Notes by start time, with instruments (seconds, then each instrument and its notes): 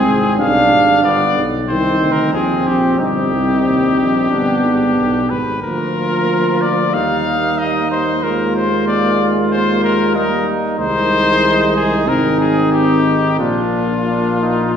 Already playing: euphonium G#3, trumpet C4 G#4, french horn C4
0.07 bass trombone G#1
0.39 bass trombone B1, euphonium G3, french horn D4, trumpet D4 F5
0.72 bass trombone G#1
1.04 bass trombone G1, euphonium G3, trumpet B3 D5
1.36 bass trombone B1
1.68 bass trombone C2, euphonium D#3, trumpet C4 C5, french horn D#4
2.01 bass trombone D2
2.12 trumpet A#4
2.33 bass trombone D#2, euphonium F3, french horn C4, trumpet C4 G#4
2.66 bass trombone A#1, trumpet G4
2.98 bass trombone G1, euphonium G3, french horn C4, trumpet D#4 G4
3.32 bass trombone C2
3.65 bass trombone D#2
3.98 bass trombone A#1
4.30 bass trombone G1, euphonium G3, french horn B3, trumpet D4
4.64 bass trombone G#1
4.98 bass trombone B1
5.30 bass trombone G#1, trumpet B4
5.62 bass trombone D2, euphonium F3, french horn A#3, trumpet F4 A#4
6.62 trumpet D5
6.94 bass trombone D#2, euphonium G3, trumpet D#4 F5
7.59 trumpet D#5
7.91 trumpet C5
8.23 euphonium G#3, trumpet F4 A#4
8.56 trumpet C5
8.88 trumpet D5
9.51 trumpet C5
9.84 trumpet A#4
10.15 euphonium G3, trumpet D#4 A#4
10.79 bass trombone C2, euphonium D#3, french horn G#3, trumpet D#4 C5
11.76 trumpet G#4
12.07 bass trombone G#1, euphonium D#3, french horn C4, trumpet D#4 A#4
12.40 trumpet G#4
12.73 trumpet G4
13.39 bass trombone A#1, euphonium A#2, french horn A#3, trumpet D4 F4
14.07 trumpet D4
14.41 trumpet D#4